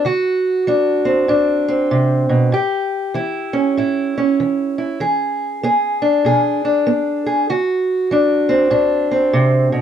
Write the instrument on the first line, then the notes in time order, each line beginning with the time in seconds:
steel-string acoustic guitar
0.05 D3 F#4
0.67 F#3 D4
1.05 C4
1.28 A2 D4
1.68 C4
1.91 C3
2.29 B2
2.52 A2 G4
3.14 E3 E4
3.53 C#4
3.77 A2 E4
4.18 C#4
4.40 E3
4.78 E4
5.00 E3 G#4
5.63 B3 G#4
6.02 D4
6.25 B2 G#4
6.65 D4
6.87 B3
7.26 G#4
7.50 D3 F#4
8.11 F#3 D4
8.49 C4
8.70 A2 D4
9.11 C4
9.33 C3
9.72 B2